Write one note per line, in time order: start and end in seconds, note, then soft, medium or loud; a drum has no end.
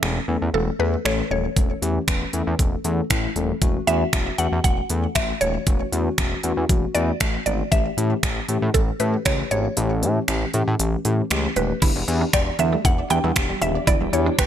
0.00 0.19 E1 loud
0.00 0.21 E3 medium
0.00 0.21 A3 medium
0.00 0.21 C#4 medium
0.00 0.21 A4 medium
0.00 0.57 E5 loud
0.00 finger snap loud
0.28 0.37 E2 medium
0.28 0.46 E3 medium
0.28 0.46 A3 medium
0.28 0.46 C#4 medium
0.28 0.47 A4 medium
0.42 0.50 E2 medium
0.54 0.71 E1 loud
0.54 0.72 E3 medium
0.54 0.72 A3 medium
0.54 0.72 C#4 medium
0.54 0.72 A4 medium
0.54 0.78 A4 medium
0.79 0.96 E2 loud
0.79 0.98 E3 medium
0.79 0.98 A3 medium
0.79 0.98 C#4 medium
0.79 0.98 A4 medium
0.79 1.06 B4 loud
1.05 1.22 A1 medium
1.05 1.23 E3 loud
1.05 1.23 A3 medium
1.05 1.23 C#4 medium
1.05 1.23 A4 loud
1.05 1.29 C#5 loud
1.05 finger snap loud
1.30 1.48 D#1 medium
1.30 1.49 E3 medium
1.30 1.49 A3 medium
1.30 1.49 C#4 medium
1.30 1.49 A4 medium
1.30 2.30 C#5 medium
1.56 1.73 E1 loud
1.56 1.75 E3 medium
1.56 1.75 A3 medium
1.56 1.75 C#4 medium
1.56 1.75 A4 loud
1.56 kick loud
1.56 closed hi-hat medium
1.82 1.99 E2 loud
1.82 2.00 E3 medium
1.82 2.00 A3 medium
1.82 2.00 C#4 medium
1.82 2.00 G4 loud
1.82 closed hi-hat soft
2.07 2.25 E1 loud
2.07 2.26 E3 medium
2.07 2.26 A3 medium
2.07 2.26 C#4 medium
2.07 2.26 B4 medium
2.07 finger snap loud
2.07 kick loud
2.07 closed hi-hat medium
2.33 2.42 E2 medium
2.33 2.51 E3 medium
2.33 2.52 A3 medium
2.33 2.52 C#4 medium
2.33 2.52 A4 loud
2.33 closed hi-hat soft
2.47 2.55 E2 medium
2.59 2.76 E1 loud
2.59 2.77 E3 medium
2.59 2.77 A3 medium
2.59 2.77 C#4 medium
2.59 2.77 A4 medium
2.59 kick loud
2.59 closed hi-hat medium
2.84 3.01 E2 loud
2.84 3.03 E3 medium
2.84 3.03 A3 medium
2.84 3.03 C#4 medium
2.84 3.03 A4 medium
2.84 closed hi-hat medium
3.10 3.27 A1 medium
3.10 3.28 E3 loud
3.10 3.28 A3 loud
3.10 3.29 C#4 loud
3.10 3.29 E4 loud
3.10 finger snap loud
3.10 kick loud
3.10 closed hi-hat medium
3.36 3.53 D#1 medium
3.36 3.54 E3 medium
3.36 3.54 A3 medium
3.36 3.54 C#4 medium
3.36 3.54 A4 medium
3.36 closed hi-hat soft
3.62 3.78 E1 loud
3.62 3.80 E3 loud
3.62 3.80 A3 loud
3.62 3.80 C#4 loud
3.62 3.80 F#4 loud
3.62 kick loud
3.62 closed hi-hat medium
3.87 4.04 E2 medium
3.87 4.05 E3 medium
3.87 4.05 A3 medium
3.87 4.06 C#4 medium
3.87 4.06 F#4 loud
3.87 4.40 E5 loud
3.87 closed hi-hat medium
4.13 4.30 E1 loud
4.13 4.31 A3 medium
4.13 4.31 C#4 medium
4.13 finger snap loud
4.13 kick loud
4.13 closed hi-hat medium
4.38 4.47 E2 loud
4.38 4.57 E3 medium
4.38 4.57 A3 medium
4.38 4.57 C#4 medium
4.38 4.57 F#4 medium
4.38 4.62 F#5 loud
4.38 closed hi-hat soft
4.52 4.60 E2 loud
4.64 4.81 E1 loud
4.64 4.82 E3 medium
4.64 4.82 A3 medium
4.64 4.82 C#4 medium
4.64 4.83 F#4 medium
4.64 5.17 F#5 loud
4.64 kick loud
4.64 closed hi-hat medium
4.90 5.07 E2 medium
4.90 5.08 E3 medium
4.90 5.08 A3 medium
4.90 5.08 C#4 medium
4.90 5.08 A4 medium
4.90 closed hi-hat medium
5.15 5.32 A1 medium
5.15 5.33 E3 medium
5.15 5.34 A3 medium
5.15 5.34 C#4 medium
5.15 5.34 F#4 loud
5.15 5.27 E5 loud
5.15 finger snap loud
5.15 kick loud
5.15 closed hi-hat medium
5.41 5.58 D#1 medium
5.41 5.59 E3 medium
5.41 5.59 A3 medium
5.41 5.59 C#4 medium
5.41 5.59 F#4 medium
5.41 6.99 C#5 loud
5.41 closed hi-hat soft
5.67 5.83 E1 loud
5.67 5.85 E3 medium
5.67 5.85 A3 medium
5.67 5.85 C#4 medium
5.67 5.85 F#4 loud
5.67 kick loud
5.67 closed hi-hat medium
5.92 6.09 E2 loud
5.92 6.10 E3 medium
5.92 6.11 A3 medium
5.92 6.11 C#4 medium
5.92 6.11 F#4 loud
5.92 closed hi-hat soft
6.18 6.35 E1 loud
6.18 6.36 E3 medium
6.18 6.36 A3 medium
6.18 6.36 C#4 medium
6.18 finger snap loud
6.18 kick loud
6.18 closed hi-hat medium
6.43 6.53 E2 medium
6.43 6.62 E3 medium
6.43 6.62 A3 medium
6.43 6.62 C#4 medium
6.43 6.62 F#4 loud
6.43 closed hi-hat soft
6.57 6.65 E2 medium
6.69 6.86 E1 loud
6.69 6.87 E3 medium
6.69 6.87 A3 medium
6.69 6.87 C#4 medium
6.69 6.88 F#4 medium
6.69 kick loud
6.69 closed hi-hat medium
6.95 7.12 E2 loud
6.95 7.13 E3 medium
6.95 7.13 A3 medium
6.95 7.13 C#4 medium
6.95 7.13 F#4 medium
6.95 7.45 D5 loud
6.95 closed hi-hat medium
7.20 7.37 A1 medium
7.20 7.39 E3 loud
7.20 7.39 A3 medium
7.20 7.39 C#4 medium
7.20 7.39 F#4 loud
7.20 finger snap loud
7.20 kick medium
7.20 closed hi-hat medium
7.46 7.63 G#1 loud
7.46 7.64 E3 medium
7.46 7.64 A3 medium
7.46 7.64 C#4 medium
7.46 7.65 F#4 medium
7.46 7.73 D5 medium
7.46 closed hi-hat soft
7.72 7.89 A1 loud
7.72 7.90 E3 medium
7.72 7.90 A3 medium
7.72 7.90 C#4 medium
7.72 7.90 G4 loud
7.72 8.77 E5 loud
7.72 kick loud
7.72 closed hi-hat medium
7.97 8.14 A2 loud
7.97 8.16 E3 loud
7.97 8.16 A3 medium
7.97 8.16 C#4 medium
7.97 8.16 G4 loud
7.97 closed hi-hat medium
8.23 8.40 A1 loud
8.23 8.41 E3 medium
8.23 8.41 A3 medium
8.23 8.41 C#4 medium
8.23 8.41 G4 medium
8.23 finger snap loud
8.23 kick loud
8.23 closed hi-hat medium
8.49 8.58 A2 medium
8.49 8.67 E3 medium
8.49 8.67 A3 medium
8.49 8.67 C#4 medium
8.49 8.67 G4 loud
8.49 closed hi-hat soft
8.62 8.70 A2 loud
8.74 8.91 A1 loud
8.74 8.92 A3 medium
8.74 8.93 C#4 medium
8.74 8.86 A4 medium
8.74 kick loud
8.74 closed hi-hat medium
9.00 9.17 A2 medium
9.00 9.18 E3 medium
9.00 9.18 A3 medium
9.00 9.18 C#4 medium
9.00 9.18 G4 medium
9.00 9.26 B4 medium
9.00 closed hi-hat medium
9.25 9.42 C#2 loud
9.25 9.44 E3 loud
9.25 9.44 A3 medium
9.25 9.44 C#4 medium
9.25 9.44 G4 loud
9.25 9.50 C#5 medium
9.25 finger snap loud
9.25 kick loud
9.25 closed hi-hat medium
9.51 9.68 G#1 medium
9.51 9.69 E3 medium
9.51 9.69 A3 medium
9.51 9.70 C#4 medium
9.51 9.70 G4 medium
9.51 10.50 C#5 medium
9.51 closed hi-hat soft
9.77 10.04 A1 loud
9.77 9.95 E3 loud
9.77 9.95 A3 medium
9.77 9.95 C#4 medium
9.77 9.95 G4 loud
9.77 closed hi-hat medium
10.02 10.19 A2 loud
10.02 10.21 E3 medium
10.02 10.21 A3 medium
10.02 10.21 C#4 medium
10.02 10.21 G4 loud
10.02 closed hi-hat medium
10.28 10.45 A1 loud
10.28 10.46 E3 medium
10.28 10.46 A3 medium
10.28 10.47 C#4 medium
10.28 10.47 G4 medium
10.28 finger snap loud
10.28 closed hi-hat medium
10.54 10.63 A2 medium
10.54 10.72 E3 medium
10.54 10.72 A3 medium
10.54 10.72 C#4 medium
10.54 10.72 G4 loud
10.54 closed hi-hat soft
10.68 10.75 A2 loud
10.79 10.96 A1 loud
10.79 10.98 E3 medium
10.79 10.98 A3 medium
10.79 10.98 C#4 medium
10.79 10.98 G4 medium
10.79 closed hi-hat medium
11.05 11.22 A2 medium
11.05 11.23 E3 medium
11.05 11.23 A3 medium
11.05 11.23 C#4 medium
11.05 11.23 G4 loud
11.05 closed hi-hat medium
11.30 11.48 C#2 medium
11.30 11.49 E3 loud
11.30 11.49 A3 loud
11.30 11.49 C#4 loud
11.30 11.49 G4 loud
11.30 finger snap loud
11.30 closed hi-hat medium
11.56 11.73 D#1 medium
11.56 11.75 E3 medium
11.56 11.75 A3 medium
11.56 11.75 C#4 medium
11.56 11.75 G4 medium
11.56 12.29 B4 medium
11.56 closed hi-hat soft
11.82 11.91 E1 loud
11.82 11.92 D3 medium
11.82 12.00 E3 loud
11.82 14.47 E3 medium
11.82 12.00 B3 medium
11.82 14.47 D4 medium
11.82 12.00 D4 medium
11.82 11.92 E4 medium
11.82 14.47 G4 medium
11.82 12.00 G4 loud
11.82 kick loud
11.82 closed hi-hat medium
11.82 crash medium
11.96 12.04 E1 loud
11.96 12.05 G3 medium
12.07 12.25 E2 loud
12.07 12.26 E3 medium
12.07 12.26 B3 medium
12.07 12.26 D4 medium
12.07 12.26 G4 loud
12.07 muted clean electric guitar stroke soft
12.07 closed hi-hat medium
12.21 12.30 D4 medium
12.33 12.50 E1 loud
12.33 12.51 E3 medium
12.33 12.51 B3 medium
12.33 12.52 D4 medium
12.33 12.52 G4 medium
12.33 12.60 D5 medium
12.33 12.43 G5 medium
12.33 finger snap loud
12.33 muted clean electric guitar stroke soft
12.33 kick loud
12.33 closed hi-hat medium
12.59 12.76 E2 medium
12.59 12.69 D3 medium
12.59 12.77 E3 medium
12.59 12.77 B3 medium
12.59 12.69 B3 medium
12.59 12.77 D4 medium
12.59 12.77 A4 medium
12.59 12.83 E5 medium
12.59 closed hi-hat soft
12.73 12.81 G3 medium
12.73 12.81 A3 medium
12.84 13.01 E1 loud
12.84 13.03 E3 medium
12.84 13.03 B3 medium
12.84 13.03 D4 medium
12.84 12.95 E4 medium
12.84 13.03 E4 medium
12.84 13.11 F#5 loud
12.84 muted clean electric guitar stroke soft
12.84 kick loud
12.84 closed hi-hat medium
12.98 13.07 D5 medium
13.10 13.19 E2 loud
13.10 13.28 E3 medium
13.10 13.28 B3 medium
13.10 13.20 B3 medium
13.10 13.29 D4 medium
13.10 13.29 G4 medium
13.10 13.20 G5 medium
13.10 13.63 G5 loud
13.10 closed hi-hat medium
13.24 13.32 E2 loud
13.24 13.33 G3 medium
13.24 13.33 E6 medium
13.36 13.53 E1 loud
13.36 13.54 E3 medium
13.36 13.54 B3 medium
13.36 13.54 D4 medium
13.36 13.54 G4 loud
13.36 finger snap loud
13.36 kick loud
13.36 closed hi-hat medium
13.50 13.58 G3 medium
13.61 13.78 D#1 medium
13.61 13.80 E3 medium
13.61 13.71 G3 medium
13.61 13.80 B3 medium
13.61 13.80 D4 medium
13.61 13.72 E4 medium
13.61 13.80 G4 medium
13.61 13.88 E5 loud
13.61 closed hi-hat soft
13.75 13.84 D5 medium
13.87 13.96 E1 loud
13.87 13.97 D3 medium
13.87 14.05 E3 loud
13.87 14.05 B3 medium
13.87 14.05 D4 medium
13.87 13.97 E4 medium
13.87 14.05 E4 loud
13.87 14.14 D5 loud
13.87 kick loud
13.87 closed hi-hat medium
14.01 14.09 E1 loud
14.01 14.10 G3 medium
14.13 14.30 E2 loud
14.13 14.31 E3 medium
14.13 14.31 B3 medium
14.13 14.31 D4 medium
14.13 14.31 E4 loud
14.13 14.40 C#5 medium
14.13 muted clean electric guitar stroke soft
14.13 closed hi-hat medium
14.26 14.35 D4 medium
14.38 14.47 E1 loud
14.38 14.47 B3 medium
14.38 14.47 D4 medium
14.38 14.47 G4 medium
14.38 14.47 B4 medium
14.38 14.47 G5 medium
14.38 finger snap loud
14.38 muted clean electric guitar stroke soft
14.38 kick loud
14.38 closed hi-hat medium